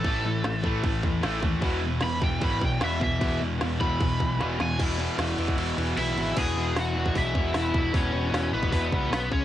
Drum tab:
CC |x---x---x---x---|x---x---x---x---|x---x---x-------|x-x-x-x-x-x-x-x-|
HH |----------------|----------------|----------------|----------------|
SD |----o-------o---|----o-------o---|----o-------o-o-|----o-----------|
BD |o-----o-o-o---o-|o-----o-o-o---o-|o-----o-o-o-----|o------o--------|

CC |x---------------|----------------|
HH |o---o---o---o---|o---o---o---o---|
SD |----o-------o---|----o-------o---|
BD |o------oo-o---o-|o------oo-o---o-|